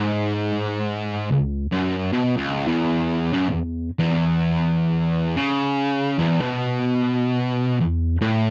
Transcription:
distorted electric guitar
Already playing: G#2
1.31 C#2
1.72 F#2
2.12 B2
2.37 C#2
2.67 E2
3.33 F#2
3.50 E2
3.99 E2
5.37 C#3
6.18 E2
6.41 B2
7.80 E2
8.21 A2

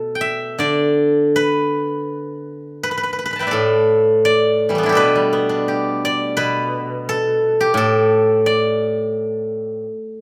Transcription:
guzheng
Already playing: B2 A4 B4
0.15 G5
0.21 E5
0.58 D3 D5
1.36 B4
2.83 B4
2.91 B4
2.98 B4
3.03 B4
3.13 B4
3.19 B4
3.26 B4
3.31 B4 B5
3.36 G5 A5
3.40 B4 E5
3.47 B4 D5
3.51 A2 A4
4.25 D5
4.69 E3 G3
4.75 A3 B3
4.83 D4 E4
4.89 G4 A4
4.95 B2 B4
5.15 G3
5.33 B3
5.49 D4
5.68 G4
6.05 D5
6.37 B2 B4
7.09 A4
7.61 G4
7.74 A2 A4
8.46 D5

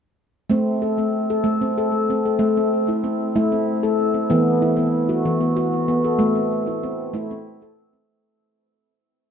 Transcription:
handpan
0.50 A3 C4
0.82 A4
0.98 C4
1.30 A4
1.44 A3
1.62 C4
1.78 A4
2.10 C4
2.26 A4
2.39 A3
2.57 C4
2.88 E4
3.04 C4
3.36 A3 E4
3.52 C4
3.83 A4
4.14 C4
4.30 E3 B3
4.62 E4
4.77 B3
5.09 F#4
5.25 E3
5.41 B3
5.57 F#4
5.88 B3
6.04 A4
6.19 A3
6.35 C4
6.67 E4
6.83 C4
7.14 A3 E4
7.31 C4
7.62 A4
7.93 C4

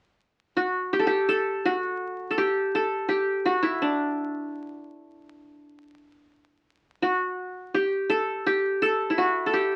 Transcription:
qanun
0.57 F#4
0.93 G4
0.99 A4
1.07 G4
1.29 A4
1.65 F#4
2.31 A4
2.38 G4
2.75 A4
3.09 G4
3.46 F#4
3.63 E4
3.82 D4
7.02 F#4
7.74 G4
8.10 A4
8.46 G4
8.82 A4
9.10 E4
9.18 F#4
9.46 A4
9.54 G4

